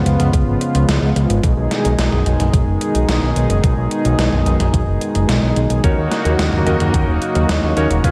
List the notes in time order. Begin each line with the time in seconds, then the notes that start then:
Already playing: C#3 F3 G#3 B3 F4
0.06 C#2, closed hi-hat
0.20 C#2, closed hi-hat, mid tom
0.33 C#2, kick, closed hi-hat
0.47 G#1
0.61 closed hi-hat
0.75 C#2, closed hi-hat
0.89 C#2, snare, closed hi-hat
1.02 C#2
1.16 C#2, closed hi-hat
1.30 G#1, closed hi-hat
1.43 B1 B2 D#3 D#4 G#4, kick, closed hi-hat
1.57 B1
1.71 snare, closed hi-hat
1.85 B1, closed hi-hat
1.99 B1, snare, closed hi-hat
2.12 B1, mid tom
2.26 B1, closed hi-hat
2.40 B1, closed hi-hat, mid tom
2.54 B1, kick, closed hi-hat
2.67 F#1
2.81 closed hi-hat
2.95 B1, closed hi-hat
3.09 B1, snare, closed hi-hat
3.22 B1
3.36 B1, closed hi-hat
3.50 F#1, closed hi-hat
3.64 B1, kick, closed hi-hat
3.77 B1
3.91 closed hi-hat
4.05 B1, closed hi-hat
4.19 B1, snare, closed hi-hat
4.32 B1, mid tom
4.46 B1, closed hi-hat
4.60 B1, closed hi-hat, mid tom
4.74 B1, kick, closed hi-hat
4.87 F#1
5.01 closed hi-hat
5.15 F#1, closed hi-hat
5.29 B1, snare, closed hi-hat
5.43 B1
5.56 B1, closed hi-hat
5.70 B1, closed hi-hat
5.84 D#2 C#3 F#3 A#3 C#4 D#4 F#4 A#4 C#5, kick, closed hi-hat
5.98 D#2
6.12 snare, closed hi-hat
6.25 D#2, closed hi-hat
6.39 D#2, snare, closed hi-hat
6.53 D#2, mid tom
6.66 D#2 C#4 D#4 F#4 A#4 D#5, closed hi-hat
6.80 D#2, closed hi-hat, mid tom
6.94 D#2, kick, closed hi-hat
7.08 D#1
7.22 closed hi-hat
7.35 D#2, closed hi-hat
7.49 D#2, snare, closed hi-hat
7.63 D#2
7.77 D#2 C#4 D#4 F#4 A#4 C#5, closed hi-hat
7.91 D#1, closed hi-hat
8.04 C#2 F3 G#3 B3 C#4 F4 G#4 B4 F5, kick, closed hi-hat